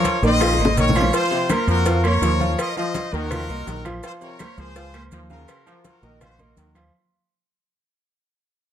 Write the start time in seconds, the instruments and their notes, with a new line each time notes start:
Already playing: grand piano F3 F4 F5, trumpet section A#4 C#5
0.04 cowbell, high conga, low agogo, maracas
0.22 fingered electric bass A#1, trombone section D#3, grand piano A#3 A#4 D#5, trumpet section C5 D#5, maracas
0.40 grand piano F3 F4 F5, cowbell, high bongo, low agogo, claves, maracas
0.54 high bongo
0.58 fingered electric bass G#1, grand piano A#3 A#4 D#5, low agogo, maracas
0.65 high bongo, low conga
0.76 fingered electric bass A#1, trombone section D#3, trumpet section A#4 C#5, cowbell, low conga, maracas
0.89 low bongo, low conga
0.95 grand piano F3 F4 F5, cowbell, low agogo, claves, maracas
1.01 low bongo, low conga
1.13 grand piano F3 F4 F5, trumpet section F4 C5, cowbell, high conga, low agogo, maracas
1.31 trombone section C3, high conga, low agogo, maracas
1.49 grand piano A#3 A#4 C5, trumpet section F4 A#4, cowbell, high conga, low agogo, claves, maracas
1.67 fingered electric bass F2, trombone section F3, trumpet section F#4 A#4, high conga, low agogo, maracas
1.86 grand piano F3 F4 F5, cowbell, high conga, maracas
2.04 grand piano A#3 A#4 C#5, trumpet section A#4 C#5, cowbell, high conga, low agogo, claves, maracas
2.21 fingered electric bass D#2, trombone section F3, cowbell, high conga, low timbale, low agogo, maracas
2.40 grand piano F3 F4 F5, high conga, maracas
2.58 trumpet section A#4 D#5, cowbell, high conga, low agogo, claves, maracas
2.76 grand piano F3 F4 F5, trombone section F3, trumpet section C5 D#5, high conga, low agogo, maracas
2.94 cowbell, high conga, low agogo, maracas
3.12 fingered electric bass D#2, trombone section D#3, grand piano A#3 A#4 D#5, trumpet section F#4 A#4, high conga, maracas
3.31 grand piano F3 F4 F5, cowbell, high conga, low conga, low agogo, claves, maracas
3.48 fingered electric bass C2, grand piano A#3 A#4 D#5, high conga, low agogo, maracas
3.66 fingered electric bass A#1, trombone section D#3, cowbell, high conga, low timbale, maracas
3.85 grand piano F3 F4 F5, cowbell, high conga, low agogo, claves, maracas
4.03 grand piano F3 F4 F5, trumpet section F4 C5, cowbell, high conga, low agogo, maracas
4.21 trombone section C3, trumpet section A#4 C#5, high conga, low agogo, maracas
4.39 grand piano A#3 A#4 C5, cowbell, high conga, low agogo, claves, maracas
4.57 fingered electric bass C#2, trombone section F3, trumpet section G#4 C5, high conga, low agogo, maracas
4.76 grand piano F3 F4 F5, cowbell, high conga, maracas
4.94 grand piano A#3 A#4 C5, cowbell, high conga, low agogo, claves, maracas
5.11 fingered electric bass D#2, trombone section F3, cowbell, high conga, low agogo, maracas
5.30 grand piano C#3 C#4 F5, trumpet section F#4 A#4, high conga, maracas
5.48 cowbell, high conga, low agogo, claves, maracas
5.66 grand piano F3 F4 F5, trombone section F3, high conga, low agogo, maracas
5.84 trumpet section F#4 A#4, cowbell, high conga, low agogo, maracas
6.02 fingered electric bass A#1, trombone section D#3, grand piano A#3 A#4 D#5, high conga, maracas
6.21 grand piano F3 F4 F5, trumpet section F#4 C5, cowbell, high conga, low conga, low agogo, claves, maracas
6.39 grand piano A#3 A#4 D#5, trumpet section F#4 A#4, high conga, low conga, low agogo, maracas
6.56 fingered electric bass D#2, trombone section D#3, cowbell, high conga, maracas
6.75 grand piano F3 F4 F5, cowbell, high conga, low agogo, claves, maracas